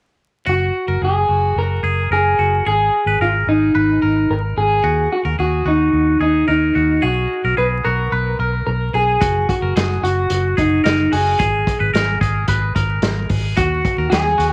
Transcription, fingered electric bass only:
0.47 0.69 F#1 medium
0.88 0.99 F#1 medium
1.02 1.24 F#1 medium
1.29 1.51 F#1 medium
1.56 1.79 F#1 medium
1.83 2.06 F#1 medium
2.11 2.33 F#1 medium
2.39 2.61 F#1 medium
2.66 2.88 G#1 medium
3.06 3.18 G#1 medium
3.20 3.43 G#1 medium
3.47 3.70 G#1 medium
3.75 3.98 G#1 loud
4.03 4.25 G#1 medium
4.30 4.52 G#1 medium
4.57 4.80 G#1 medium
4.84 5.06 D#2 medium
5.25 5.36 D#2 medium
5.39 5.61 D#2 loud
5.65 5.88 D#2 medium
5.93 6.16 D#2 medium
6.20 6.43 D#2 medium
6.48 6.71 D#2 medium
6.76 6.98 D#2 medium
7.03 7.25 B1 medium
7.44 7.55 B1 medium
7.58 7.80 B1 medium
7.85 8.07 B1 medium
8.12 8.34 B1 medium
8.39 8.62 B1 medium
8.67 8.89 B1 medium
8.94 9.16 B1 medium
9.21 9.44 F#1 medium
9.62 9.73 F#1 medium
9.76 9.98 F#1 medium
10.02 10.25 F#1 medium
10.30 10.53 F#1 medium
10.58 10.80 F#1 medium
10.85 11.07 F#1 medium
11.12 11.35 F#1 medium
11.40 11.62 G#1 medium
11.80 11.92 G#1 loud
11.94 12.16 G#1 medium
12.21 12.44 G#1 medium
12.48 12.71 G#1 loud
12.76 12.98 G#1 medium
13.02 13.25 G#1 medium
13.30 13.53 G#1 medium
13.58 13.80 D#2 medium
13.98 14.10 D#2 medium
14.12 14.34 D#2 medium
14.39 14.53 D#2 medium

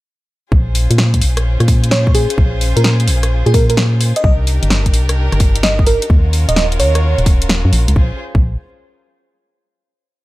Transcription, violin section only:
0.52 4.20 C#4 medium
0.52 4.20 F4 medium
0.52 4.20 G#4 medium
0.52 4.20 C5 medium
4.24 6.08 D4 medium
4.24 6.08 D#4 medium
4.24 6.08 G4 medium
4.24 6.08 A#4 medium
6.10 7.94 C#4 medium
6.10 7.94 F4 medium
6.10 7.94 F#4 medium
6.10 7.94 A#4 medium
7.96 8.18 C#4 medium
7.96 8.18 F4 medium
7.96 8.18 G#4 medium
7.96 8.18 C5 medium

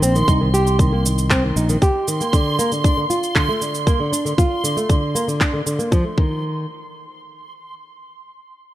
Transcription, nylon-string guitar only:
0.02 0.14 C4 medium
0.15 0.27 D#3 medium
0.28 0.40 D#4 medium
0.41 0.48 D#3 medium
0.54 0.78 G4 loud
0.80 0.92 D#3 medium
0.92 1.04 A#3 medium
1.05 1.29 D#3 medium
1.31 1.42 C4 medium
1.44 1.55 D#3 medium
1.57 1.68 D#4 medium
1.70 1.76 D#3 medium
1.82 2.06 G4 loud
2.08 2.20 D#3 medium
2.21 2.32 A#3 medium
2.33 2.58 D3 medium
2.59 2.70 A#3 loud
2.72 2.83 D3 medium
2.84 2.96 D4 medium
2.97 3.04 D3 medium
3.10 3.34 F4 medium
3.35 3.48 D3 medium
3.49 3.60 A3 medium
3.61 3.86 D3 medium
3.87 3.98 A#3 medium
4.00 4.11 D3 medium
4.12 4.24 D4 medium
4.25 4.33 D3 medium
4.38 4.62 F4 medium
4.64 4.76 D3 medium
4.77 4.88 A3 medium
4.89 5.14 D3 medium
5.15 5.27 A#3 medium
5.28 5.39 D3 medium
5.40 5.52 D4 medium
5.53 5.61 D3 medium
5.66 5.78 D3 medium
5.79 5.90 A#3 medium
5.92 6.03 F3 medium
6.04 6.16 A3 medium
6.17 6.65 D#3 medium

